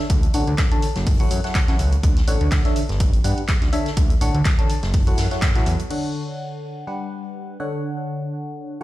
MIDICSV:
0, 0, Header, 1, 4, 480
1, 0, Start_track
1, 0, Key_signature, 2, "major"
1, 0, Tempo, 483871
1, 98, Time_signature, 4, 2, 24, 8
1, 8762, End_track
2, 0, Start_track
2, 0, Title_t, "FM electric piano"
2, 0, Program_c, 0, 5
2, 337, Note_on_c, 0, 62, 85
2, 338, Note_on_c, 0, 50, 91
2, 338, Note_on_c, 0, 69, 83
2, 338, Note_on_c, 0, 73, 82
2, 338, Note_on_c, 0, 78, 97
2, 510, Note_off_c, 0, 50, 0
2, 510, Note_off_c, 0, 62, 0
2, 510, Note_off_c, 0, 69, 0
2, 510, Note_off_c, 0, 73, 0
2, 510, Note_off_c, 0, 78, 0
2, 710, Note_on_c, 0, 50, 76
2, 710, Note_on_c, 0, 62, 69
2, 710, Note_on_c, 0, 69, 69
2, 710, Note_on_c, 0, 73, 68
2, 710, Note_on_c, 0, 81, 83
2, 867, Note_off_c, 0, 50, 0
2, 867, Note_off_c, 0, 62, 0
2, 867, Note_off_c, 0, 69, 0
2, 867, Note_off_c, 0, 73, 0
2, 867, Note_off_c, 0, 81, 0
2, 1190, Note_on_c, 0, 54, 87
2, 1190, Note_on_c, 0, 64, 76
2, 1190, Note_on_c, 0, 69, 75
2, 1190, Note_on_c, 0, 73, 76
2, 1190, Note_on_c, 0, 78, 91
2, 1398, Note_off_c, 0, 54, 0
2, 1398, Note_off_c, 0, 64, 0
2, 1398, Note_off_c, 0, 69, 0
2, 1398, Note_off_c, 0, 73, 0
2, 1398, Note_off_c, 0, 78, 0
2, 1430, Note_on_c, 0, 54, 72
2, 1430, Note_on_c, 0, 64, 69
2, 1430, Note_on_c, 0, 69, 68
2, 1430, Note_on_c, 0, 73, 68
2, 1430, Note_on_c, 0, 78, 85
2, 1587, Note_off_c, 0, 54, 0
2, 1587, Note_off_c, 0, 64, 0
2, 1587, Note_off_c, 0, 69, 0
2, 1587, Note_off_c, 0, 73, 0
2, 1587, Note_off_c, 0, 78, 0
2, 1670, Note_on_c, 0, 54, 79
2, 1670, Note_on_c, 0, 64, 75
2, 1670, Note_on_c, 0, 69, 72
2, 1670, Note_on_c, 0, 73, 73
2, 1670, Note_on_c, 0, 78, 89
2, 1931, Note_off_c, 0, 54, 0
2, 1931, Note_off_c, 0, 64, 0
2, 1931, Note_off_c, 0, 69, 0
2, 1931, Note_off_c, 0, 73, 0
2, 1931, Note_off_c, 0, 78, 0
2, 2258, Note_on_c, 0, 50, 84
2, 2258, Note_on_c, 0, 62, 83
2, 2258, Note_on_c, 0, 69, 79
2, 2258, Note_on_c, 0, 73, 79
2, 2258, Note_on_c, 0, 78, 96
2, 2598, Note_off_c, 0, 50, 0
2, 2598, Note_off_c, 0, 62, 0
2, 2598, Note_off_c, 0, 69, 0
2, 2598, Note_off_c, 0, 73, 0
2, 2598, Note_off_c, 0, 78, 0
2, 2630, Note_on_c, 0, 50, 86
2, 2630, Note_on_c, 0, 62, 80
2, 2630, Note_on_c, 0, 69, 80
2, 2630, Note_on_c, 0, 73, 78
2, 2630, Note_on_c, 0, 76, 92
2, 2787, Note_off_c, 0, 50, 0
2, 2787, Note_off_c, 0, 62, 0
2, 2787, Note_off_c, 0, 69, 0
2, 2787, Note_off_c, 0, 73, 0
2, 2787, Note_off_c, 0, 76, 0
2, 3217, Note_on_c, 0, 55, 80
2, 3217, Note_on_c, 0, 67, 73
2, 3218, Note_on_c, 0, 62, 76
2, 3218, Note_on_c, 0, 71, 73
2, 3218, Note_on_c, 0, 78, 87
2, 3390, Note_off_c, 0, 55, 0
2, 3390, Note_off_c, 0, 62, 0
2, 3390, Note_off_c, 0, 67, 0
2, 3390, Note_off_c, 0, 71, 0
2, 3390, Note_off_c, 0, 78, 0
2, 3697, Note_on_c, 0, 50, 95
2, 3698, Note_on_c, 0, 62, 83
2, 3698, Note_on_c, 0, 69, 82
2, 3698, Note_on_c, 0, 73, 83
2, 3698, Note_on_c, 0, 76, 101
2, 3870, Note_off_c, 0, 50, 0
2, 3870, Note_off_c, 0, 62, 0
2, 3870, Note_off_c, 0, 69, 0
2, 3870, Note_off_c, 0, 73, 0
2, 3870, Note_off_c, 0, 76, 0
2, 4177, Note_on_c, 0, 69, 87
2, 4178, Note_on_c, 0, 50, 90
2, 4178, Note_on_c, 0, 62, 82
2, 4178, Note_on_c, 0, 73, 86
2, 4178, Note_on_c, 0, 78, 102
2, 4350, Note_off_c, 0, 50, 0
2, 4350, Note_off_c, 0, 62, 0
2, 4350, Note_off_c, 0, 69, 0
2, 4350, Note_off_c, 0, 73, 0
2, 4350, Note_off_c, 0, 78, 0
2, 4550, Note_on_c, 0, 50, 74
2, 4550, Note_on_c, 0, 62, 71
2, 4550, Note_on_c, 0, 69, 70
2, 4550, Note_on_c, 0, 73, 71
2, 4550, Note_on_c, 0, 81, 80
2, 4707, Note_off_c, 0, 50, 0
2, 4707, Note_off_c, 0, 62, 0
2, 4707, Note_off_c, 0, 69, 0
2, 4707, Note_off_c, 0, 73, 0
2, 4707, Note_off_c, 0, 81, 0
2, 5029, Note_on_c, 0, 78, 94
2, 5030, Note_on_c, 0, 54, 83
2, 5030, Note_on_c, 0, 64, 74
2, 5030, Note_on_c, 0, 69, 74
2, 5030, Note_on_c, 0, 73, 74
2, 5238, Note_off_c, 0, 54, 0
2, 5238, Note_off_c, 0, 64, 0
2, 5238, Note_off_c, 0, 69, 0
2, 5238, Note_off_c, 0, 73, 0
2, 5238, Note_off_c, 0, 78, 0
2, 5269, Note_on_c, 0, 54, 77
2, 5269, Note_on_c, 0, 69, 70
2, 5269, Note_on_c, 0, 73, 72
2, 5269, Note_on_c, 0, 78, 83
2, 5270, Note_on_c, 0, 64, 72
2, 5427, Note_off_c, 0, 54, 0
2, 5427, Note_off_c, 0, 64, 0
2, 5427, Note_off_c, 0, 69, 0
2, 5427, Note_off_c, 0, 73, 0
2, 5427, Note_off_c, 0, 78, 0
2, 5510, Note_on_c, 0, 54, 82
2, 5510, Note_on_c, 0, 64, 74
2, 5510, Note_on_c, 0, 69, 74
2, 5510, Note_on_c, 0, 73, 72
2, 5510, Note_on_c, 0, 78, 91
2, 5771, Note_off_c, 0, 54, 0
2, 5771, Note_off_c, 0, 64, 0
2, 5771, Note_off_c, 0, 69, 0
2, 5771, Note_off_c, 0, 73, 0
2, 5771, Note_off_c, 0, 78, 0
2, 5857, Note_on_c, 0, 50, 72
2, 5857, Note_on_c, 0, 62, 67
2, 5857, Note_on_c, 0, 69, 65
2, 5857, Note_on_c, 0, 73, 64
2, 5857, Note_on_c, 0, 78, 74
2, 6791, Note_off_c, 0, 69, 0
2, 6792, Note_off_c, 0, 50, 0
2, 6792, Note_off_c, 0, 62, 0
2, 6792, Note_off_c, 0, 73, 0
2, 6792, Note_off_c, 0, 78, 0
2, 6818, Note_on_c, 0, 55, 74
2, 6818, Note_on_c, 0, 62, 64
2, 6818, Note_on_c, 0, 67, 64
2, 6818, Note_on_c, 0, 71, 64
2, 6818, Note_on_c, 0, 78, 75
2, 7512, Note_off_c, 0, 55, 0
2, 7512, Note_off_c, 0, 62, 0
2, 7512, Note_off_c, 0, 67, 0
2, 7512, Note_off_c, 0, 71, 0
2, 7512, Note_off_c, 0, 78, 0
2, 7538, Note_on_c, 0, 50, 73
2, 7538, Note_on_c, 0, 62, 62
2, 7538, Note_on_c, 0, 69, 67
2, 7538, Note_on_c, 0, 73, 66
2, 7538, Note_on_c, 0, 78, 73
2, 8712, Note_off_c, 0, 50, 0
2, 8712, Note_off_c, 0, 62, 0
2, 8712, Note_off_c, 0, 69, 0
2, 8712, Note_off_c, 0, 73, 0
2, 8712, Note_off_c, 0, 78, 0
2, 8762, End_track
3, 0, Start_track
3, 0, Title_t, "Analog synth bass"
3, 0, Program_c, 1, 38
3, 98, Note_on_c, 1, 38, 95
3, 278, Note_off_c, 1, 38, 0
3, 337, Note_on_c, 1, 33, 86
3, 433, Note_off_c, 1, 33, 0
3, 470, Note_on_c, 1, 38, 102
3, 548, Note_off_c, 1, 38, 0
3, 950, Note_on_c, 1, 30, 87
3, 1250, Note_off_c, 1, 30, 0
3, 1297, Note_on_c, 1, 42, 77
3, 1393, Note_off_c, 1, 42, 0
3, 1669, Note_on_c, 1, 49, 90
3, 1748, Note_off_c, 1, 49, 0
3, 1778, Note_on_c, 1, 37, 83
3, 1958, Note_off_c, 1, 37, 0
3, 2018, Note_on_c, 1, 38, 99
3, 2198, Note_off_c, 1, 38, 0
3, 2257, Note_on_c, 1, 33, 86
3, 2353, Note_off_c, 1, 33, 0
3, 2390, Note_on_c, 1, 38, 101
3, 2468, Note_off_c, 1, 38, 0
3, 2870, Note_on_c, 1, 31, 87
3, 3170, Note_off_c, 1, 31, 0
3, 3218, Note_on_c, 1, 43, 83
3, 3314, Note_off_c, 1, 43, 0
3, 3589, Note_on_c, 1, 38, 89
3, 3668, Note_off_c, 1, 38, 0
3, 3938, Note_on_c, 1, 38, 91
3, 4118, Note_off_c, 1, 38, 0
3, 4178, Note_on_c, 1, 33, 94
3, 4273, Note_off_c, 1, 33, 0
3, 4310, Note_on_c, 1, 38, 101
3, 4388, Note_off_c, 1, 38, 0
3, 4790, Note_on_c, 1, 30, 88
3, 5090, Note_off_c, 1, 30, 0
3, 5137, Note_on_c, 1, 42, 80
3, 5233, Note_off_c, 1, 42, 0
3, 5378, Note_on_c, 1, 30, 107
3, 5473, Note_off_c, 1, 30, 0
3, 5509, Note_on_c, 1, 45, 84
3, 5588, Note_off_c, 1, 45, 0
3, 5617, Note_on_c, 1, 40, 100
3, 5713, Note_off_c, 1, 40, 0
3, 8762, End_track
4, 0, Start_track
4, 0, Title_t, "Drums"
4, 94, Note_on_c, 9, 42, 88
4, 98, Note_off_c, 9, 42, 0
4, 98, Note_on_c, 9, 36, 113
4, 98, Note_on_c, 9, 42, 94
4, 197, Note_off_c, 9, 36, 0
4, 197, Note_off_c, 9, 42, 0
4, 226, Note_on_c, 9, 42, 50
4, 230, Note_off_c, 9, 42, 0
4, 230, Note_on_c, 9, 42, 38
4, 329, Note_off_c, 9, 42, 0
4, 332, Note_on_c, 9, 42, 60
4, 337, Note_on_c, 9, 46, 102
4, 431, Note_off_c, 9, 42, 0
4, 436, Note_off_c, 9, 46, 0
4, 470, Note_on_c, 9, 42, 37
4, 569, Note_off_c, 9, 42, 0
4, 578, Note_on_c, 9, 36, 113
4, 578, Note_on_c, 9, 39, 105
4, 578, Note_on_c, 9, 42, 93
4, 579, Note_on_c, 9, 38, 120
4, 580, Note_off_c, 9, 42, 0
4, 580, Note_on_c, 9, 42, 87
4, 677, Note_off_c, 9, 36, 0
4, 678, Note_off_c, 9, 38, 0
4, 678, Note_off_c, 9, 39, 0
4, 679, Note_off_c, 9, 42, 0
4, 710, Note_on_c, 9, 42, 41
4, 809, Note_off_c, 9, 42, 0
4, 818, Note_on_c, 9, 46, 85
4, 821, Note_on_c, 9, 42, 69
4, 917, Note_off_c, 9, 46, 0
4, 920, Note_off_c, 9, 42, 0
4, 946, Note_on_c, 9, 38, 60
4, 949, Note_on_c, 9, 42, 38
4, 1045, Note_off_c, 9, 38, 0
4, 1048, Note_off_c, 9, 42, 0
4, 1056, Note_on_c, 9, 46, 87
4, 1057, Note_on_c, 9, 42, 96
4, 1058, Note_on_c, 9, 36, 108
4, 1155, Note_off_c, 9, 46, 0
4, 1157, Note_off_c, 9, 36, 0
4, 1157, Note_off_c, 9, 42, 0
4, 1190, Note_on_c, 9, 42, 39
4, 1289, Note_off_c, 9, 42, 0
4, 1298, Note_on_c, 9, 46, 98
4, 1300, Note_on_c, 9, 42, 68
4, 1397, Note_off_c, 9, 46, 0
4, 1399, Note_off_c, 9, 42, 0
4, 1430, Note_on_c, 9, 42, 37
4, 1435, Note_on_c, 9, 38, 50
4, 1529, Note_off_c, 9, 42, 0
4, 1534, Note_off_c, 9, 38, 0
4, 1534, Note_on_c, 9, 38, 106
4, 1537, Note_on_c, 9, 42, 89
4, 1538, Note_on_c, 9, 36, 117
4, 1538, Note_on_c, 9, 39, 114
4, 1541, Note_off_c, 9, 42, 0
4, 1541, Note_on_c, 9, 42, 90
4, 1633, Note_off_c, 9, 38, 0
4, 1637, Note_off_c, 9, 36, 0
4, 1637, Note_off_c, 9, 39, 0
4, 1640, Note_off_c, 9, 42, 0
4, 1663, Note_on_c, 9, 38, 44
4, 1670, Note_on_c, 9, 42, 39
4, 1762, Note_off_c, 9, 38, 0
4, 1769, Note_off_c, 9, 42, 0
4, 1776, Note_on_c, 9, 42, 68
4, 1777, Note_on_c, 9, 46, 81
4, 1876, Note_off_c, 9, 42, 0
4, 1877, Note_off_c, 9, 46, 0
4, 1905, Note_on_c, 9, 42, 44
4, 1910, Note_off_c, 9, 42, 0
4, 1910, Note_on_c, 9, 42, 37
4, 2009, Note_off_c, 9, 42, 0
4, 2018, Note_on_c, 9, 36, 114
4, 2018, Note_on_c, 9, 42, 97
4, 2020, Note_off_c, 9, 42, 0
4, 2020, Note_on_c, 9, 42, 92
4, 2117, Note_off_c, 9, 36, 0
4, 2119, Note_off_c, 9, 42, 0
4, 2150, Note_on_c, 9, 42, 42
4, 2153, Note_on_c, 9, 38, 52
4, 2249, Note_off_c, 9, 42, 0
4, 2253, Note_off_c, 9, 38, 0
4, 2257, Note_on_c, 9, 46, 98
4, 2261, Note_on_c, 9, 42, 67
4, 2357, Note_off_c, 9, 46, 0
4, 2360, Note_off_c, 9, 42, 0
4, 2390, Note_on_c, 9, 42, 39
4, 2489, Note_off_c, 9, 42, 0
4, 2492, Note_on_c, 9, 38, 126
4, 2495, Note_on_c, 9, 42, 85
4, 2497, Note_off_c, 9, 42, 0
4, 2497, Note_on_c, 9, 42, 92
4, 2498, Note_on_c, 9, 36, 110
4, 2498, Note_on_c, 9, 39, 111
4, 2592, Note_off_c, 9, 38, 0
4, 2597, Note_off_c, 9, 36, 0
4, 2597, Note_off_c, 9, 39, 0
4, 2597, Note_off_c, 9, 42, 0
4, 2629, Note_on_c, 9, 38, 36
4, 2629, Note_on_c, 9, 42, 41
4, 2728, Note_off_c, 9, 38, 0
4, 2729, Note_off_c, 9, 42, 0
4, 2738, Note_on_c, 9, 46, 88
4, 2740, Note_on_c, 9, 42, 69
4, 2837, Note_off_c, 9, 46, 0
4, 2839, Note_off_c, 9, 42, 0
4, 2870, Note_on_c, 9, 42, 39
4, 2877, Note_on_c, 9, 38, 38
4, 2969, Note_off_c, 9, 42, 0
4, 2977, Note_off_c, 9, 38, 0
4, 2977, Note_on_c, 9, 42, 84
4, 2978, Note_off_c, 9, 42, 0
4, 2978, Note_on_c, 9, 36, 112
4, 2978, Note_on_c, 9, 42, 95
4, 3077, Note_off_c, 9, 36, 0
4, 3077, Note_off_c, 9, 42, 0
4, 3110, Note_on_c, 9, 42, 40
4, 3112, Note_off_c, 9, 42, 0
4, 3112, Note_on_c, 9, 42, 47
4, 3211, Note_off_c, 9, 42, 0
4, 3218, Note_on_c, 9, 46, 97
4, 3221, Note_on_c, 9, 42, 67
4, 3317, Note_off_c, 9, 46, 0
4, 3320, Note_off_c, 9, 42, 0
4, 3350, Note_on_c, 9, 42, 39
4, 3449, Note_off_c, 9, 42, 0
4, 3453, Note_on_c, 9, 38, 118
4, 3458, Note_on_c, 9, 36, 105
4, 3458, Note_on_c, 9, 39, 109
4, 3458, Note_on_c, 9, 42, 96
4, 3464, Note_off_c, 9, 42, 0
4, 3464, Note_on_c, 9, 42, 82
4, 3552, Note_off_c, 9, 38, 0
4, 3557, Note_off_c, 9, 36, 0
4, 3558, Note_off_c, 9, 39, 0
4, 3564, Note_off_c, 9, 42, 0
4, 3589, Note_on_c, 9, 38, 52
4, 3590, Note_on_c, 9, 42, 42
4, 3688, Note_off_c, 9, 38, 0
4, 3689, Note_off_c, 9, 42, 0
4, 3698, Note_on_c, 9, 46, 83
4, 3702, Note_on_c, 9, 42, 61
4, 3797, Note_off_c, 9, 46, 0
4, 3801, Note_off_c, 9, 42, 0
4, 3830, Note_on_c, 9, 42, 40
4, 3833, Note_on_c, 9, 38, 50
4, 3929, Note_off_c, 9, 42, 0
4, 3933, Note_off_c, 9, 38, 0
4, 3937, Note_on_c, 9, 42, 90
4, 3938, Note_off_c, 9, 42, 0
4, 3938, Note_on_c, 9, 36, 113
4, 3938, Note_on_c, 9, 42, 102
4, 4037, Note_off_c, 9, 36, 0
4, 4037, Note_off_c, 9, 42, 0
4, 4066, Note_on_c, 9, 42, 50
4, 4070, Note_off_c, 9, 42, 0
4, 4070, Note_on_c, 9, 42, 41
4, 4169, Note_off_c, 9, 42, 0
4, 4177, Note_on_c, 9, 42, 65
4, 4178, Note_on_c, 9, 46, 103
4, 4277, Note_off_c, 9, 42, 0
4, 4277, Note_off_c, 9, 46, 0
4, 4310, Note_on_c, 9, 42, 40
4, 4409, Note_off_c, 9, 42, 0
4, 4413, Note_on_c, 9, 38, 115
4, 4418, Note_on_c, 9, 36, 120
4, 4418, Note_on_c, 9, 42, 92
4, 4419, Note_off_c, 9, 42, 0
4, 4419, Note_on_c, 9, 39, 113
4, 4419, Note_on_c, 9, 42, 80
4, 4512, Note_off_c, 9, 38, 0
4, 4517, Note_off_c, 9, 36, 0
4, 4518, Note_off_c, 9, 39, 0
4, 4518, Note_off_c, 9, 42, 0
4, 4550, Note_on_c, 9, 42, 42
4, 4649, Note_off_c, 9, 42, 0
4, 4658, Note_on_c, 9, 46, 91
4, 4662, Note_on_c, 9, 42, 72
4, 4757, Note_off_c, 9, 46, 0
4, 4761, Note_off_c, 9, 42, 0
4, 4789, Note_on_c, 9, 38, 58
4, 4790, Note_on_c, 9, 42, 40
4, 4889, Note_off_c, 9, 38, 0
4, 4889, Note_off_c, 9, 42, 0
4, 4897, Note_on_c, 9, 46, 73
4, 4898, Note_on_c, 9, 36, 115
4, 4898, Note_on_c, 9, 42, 93
4, 4996, Note_off_c, 9, 46, 0
4, 4997, Note_off_c, 9, 36, 0
4, 4997, Note_off_c, 9, 42, 0
4, 5031, Note_on_c, 9, 42, 41
4, 5130, Note_off_c, 9, 42, 0
4, 5132, Note_on_c, 9, 42, 75
4, 5136, Note_on_c, 9, 38, 108
4, 5138, Note_on_c, 9, 46, 97
4, 5232, Note_off_c, 9, 42, 0
4, 5235, Note_off_c, 9, 38, 0
4, 5237, Note_off_c, 9, 46, 0
4, 5269, Note_on_c, 9, 38, 48
4, 5270, Note_on_c, 9, 42, 39
4, 5368, Note_off_c, 9, 38, 0
4, 5369, Note_off_c, 9, 42, 0
4, 5378, Note_on_c, 9, 36, 111
4, 5378, Note_on_c, 9, 42, 99
4, 5379, Note_on_c, 9, 39, 120
4, 5380, Note_off_c, 9, 42, 0
4, 5380, Note_on_c, 9, 38, 127
4, 5380, Note_on_c, 9, 42, 85
4, 5477, Note_off_c, 9, 36, 0
4, 5478, Note_off_c, 9, 39, 0
4, 5479, Note_off_c, 9, 38, 0
4, 5479, Note_off_c, 9, 42, 0
4, 5510, Note_on_c, 9, 42, 41
4, 5515, Note_on_c, 9, 38, 39
4, 5609, Note_off_c, 9, 42, 0
4, 5614, Note_off_c, 9, 38, 0
4, 5618, Note_on_c, 9, 46, 83
4, 5621, Note_on_c, 9, 42, 71
4, 5717, Note_off_c, 9, 46, 0
4, 5720, Note_off_c, 9, 42, 0
4, 5749, Note_on_c, 9, 42, 42
4, 5750, Note_off_c, 9, 42, 0
4, 5750, Note_on_c, 9, 42, 41
4, 5849, Note_off_c, 9, 42, 0
4, 5858, Note_on_c, 9, 49, 76
4, 5957, Note_off_c, 9, 49, 0
4, 8762, End_track
0, 0, End_of_file